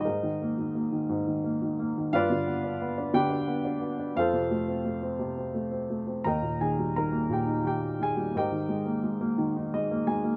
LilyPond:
<<
  \new Staff \with { instrumentName = "Upright piano" } { \time 6/8 \key aes \lydian \tempo 4. = 58 <ees' aes' bes' ees''>2 r4 | <f' b' d'' f''>4 r8 <g' b' g''>4. | <f' a' c'' f''>2~ <f' a' c'' f''>8 r8 | <bes' ees'' g'' bes''>8 <aes' aes''>8 <bes' bes''>8 <g' g''>8 <g' g''>8 <aes' aes''>8 |
<g' bes' ees'' g''>2 ees''8 aes''8 | }
  \new Staff \with { instrumentName = "Upright piano" } { \clef bass \time 6/8 \key aes \lydian aes,16 ees16 bes16 ees16 bes16 ees16 aes,16 ees16 bes16 ees16 bes16 ees16 | g,16 d16 b16 d'16 b16 d'16 d16 d'16 b16 d'16 b16 d'16 | f,16 c16 a16 c'16 a16 c'16 c16 c'16 a16 c'16 a16 c'16 | ees,16 bes,16 ees16 g16 ees16 bes16 bes,16 ees'16 ees8 ees16 g16 |
aes,16 ees16 aes16 bes16 aes16 bes16 ees16 ees'16 aes16 bes16 aes16 bes16 | }
>>